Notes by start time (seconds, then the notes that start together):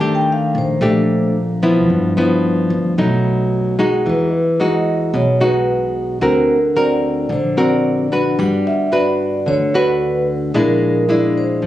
Already playing: D#2 D#3 A5
0.00 A3 D4 G4
0.15 G5
0.32 F5
0.55 A#1 C5
0.81 A#1 A#2 A3 D4 G4
1.63 F3 B3 E4
1.89 G2
2.17 F3 B3 E4
2.70 D2
2.98 B1 B2 F#3 A3 D#4
3.79 G#3 D#4 F#4
4.06 E2 E3 B4
4.60 G#3 D#4 F#4 D#5
5.14 B1 B2 C#5
5.41 G#3 D#4 F#4 B4
6.21 D2 D3 C4 F#4 A#4
6.76 C4 F#4 A#4 D5
7.29 A#1 D3 C5
7.57 C4 F#4 A#4 D5
8.12 D4 F#4 B4
8.39 G1 G3 F#5
8.67 E5
8.92 D4 F#4 B4 D5
9.46 D2 D3 C#5
9.74 D4 F#4 B4
10.54 A#1 A#2 G#3 D4 E4 A#4
11.09 G#3 D4 E4 D5
11.38 C5
11.62 F2 F3